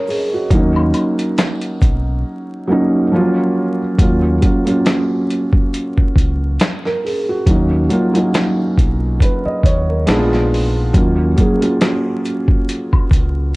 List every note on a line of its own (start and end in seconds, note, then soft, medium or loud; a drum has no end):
0.00 0.52 A#4 medium
0.00 0.53 C#5 medium
0.00 0.52 D#5 medium
0.07 0.31 G#4 medium
0.07 open hi-hat soft
0.07 shaker medium
0.34 0.74 F#4 medium
0.50 0.91 D#2 loud
0.50 1.77 F#3 medium
0.50 1.78 A#3 medium
0.50 1.79 C#4 medium
0.50 kick loud
0.50 closed hi-hat medium
0.50 shaker medium
0.55 1.79 D#4 medium
0.76 high woodblock medium
0.94 closed hi-hat medium
0.94 high woodblock medium
0.94 shaker soft
1.19 closed hi-hat medium
1.38 snare medium
1.38 closed hi-hat medium
1.38 shaker medium
1.61 closed hi-hat medium
1.81 2.22 B1 medium
1.81 kick medium
1.81 closed hi-hat medium
1.81 shaker medium
2.68 3.01 F#3 medium
2.68 3.01 A#3 medium
2.68 3.02 C#4 medium
2.72 3.03 D#4 medium
3.12 3.19 F3 medium
3.12 3.78 A#3 medium
3.12 3.78 C#4 medium
3.12 3.79 F4 loud
3.18 3.80 F#3 medium
3.98 4.39 D#2 loud
3.98 4.31 F#3 medium
3.98 4.32 A#3 medium
3.98 4.33 C#4 medium
3.98 kick loud
3.98 closed hi-hat medium
4.02 4.33 F4 medium
4.42 4.59 F#3 medium
4.42 4.60 A#3 medium
4.42 4.61 C#4 medium
4.42 4.61 F4 medium
4.42 kick medium
4.42 closed hi-hat medium
4.66 5.92 F#3 medium
4.66 5.92 A#3 medium
4.66 5.93 C#4 medium
4.66 closed hi-hat medium
4.70 5.94 F4 medium
4.86 snare medium
4.86 closed hi-hat medium
5.30 closed hi-hat medium
5.53 kick loud
5.74 closed hi-hat medium
5.98 kick medium
6.16 6.57 C#2 medium
6.16 kick medium
6.16 closed hi-hat soft
6.60 snare loud
6.60 closed hi-hat medium
6.85 7.03 A#4 medium
6.85 snare soft
7.05 7.27 G#4 medium
7.05 open hi-hat soft
7.29 7.69 F#4 medium
7.47 7.88 D#2 loud
7.47 7.79 F#3 medium
7.47 7.80 A#3 medium
7.47 7.81 C#4 medium
7.47 kick loud
7.47 closed hi-hat medium
7.51 7.81 D#4 medium
7.89 8.07 F#3 medium
7.89 8.08 A#3 medium
7.89 8.08 C#4 medium
7.89 closed hi-hat medium
7.93 8.09 F4 medium
8.14 9.40 F#3 medium
8.14 9.40 A#3 medium
8.14 9.41 C#4 medium
8.14 9.42 D#4 medium
8.14 closed hi-hat medium
8.34 snare loud
8.34 closed hi-hat medium
8.78 9.18 B1 medium
8.78 kick medium
8.78 closed hi-hat medium
9.20 9.44 B4 medium
9.20 kick medium
9.20 closed hi-hat medium
9.46 9.63 D#5 medium
9.46 muted fingered electric bass stroke soft
9.63 10.05 D#2 medium
9.63 9.87 C#5 medium
9.63 kick medium
9.63 closed hi-hat medium
9.89 10.30 A#4 medium
10.06 10.91 A#1 loud
10.06 10.78 G#3 loud
10.06 10.79 B3 medium
10.06 10.80 D4 medium
10.06 10.16 D#4 medium
10.06 snare loud
10.06 closed hi-hat medium
10.17 10.84 F4 loud
10.33 snare soft
10.54 open hi-hat soft
10.93 11.35 D#2 loud
10.93 11.27 F#3 medium
10.93 11.27 A#3 medium
10.93 11.28 C#4 medium
10.93 11.29 F4 medium
10.93 kick loud
10.93 closed hi-hat medium
10.93 shaker medium
11.37 11.55 F#3 medium
11.37 11.55 A#3 medium
11.37 11.56 C#4 medium
11.37 kick medium
11.37 closed hi-hat medium
11.37 shaker soft
11.41 11.57 G#4 medium
11.61 12.87 F#3 medium
11.61 12.88 A#3 medium
11.61 12.88 C#4 medium
11.61 closed hi-hat medium
11.65 12.89 F4 medium
11.81 snare loud
11.81 closed hi-hat medium
11.81 shaker medium
12.25 closed hi-hat medium
12.25 shaker medium
12.48 kick loud
12.68 closed hi-hat medium
12.68 shaker medium
12.93 kick medium
12.93 high woodblock medium
13.11 13.52 C#2 medium
13.11 kick medium
13.11 closed hi-hat medium
13.11 shaker medium